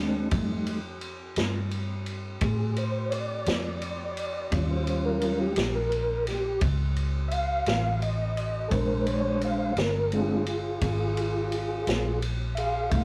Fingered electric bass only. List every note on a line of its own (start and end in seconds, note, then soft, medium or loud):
0.00 0.29 D#2 medium
0.32 1.34 F2 medium
1.37 2.39 G2 medium
2.42 3.44 A2 medium
3.47 4.49 F2 loud
4.52 5.54 D#2 medium
5.57 6.59 A#1 medium
6.61 7.64 C#2 loud
7.67 8.69 A1 medium
8.71 9.73 A#1 medium
9.77 10.78 G1 medium
10.82 11.83 G#1 medium
11.87 12.89 A#1 loud
12.91 13.04 C2 medium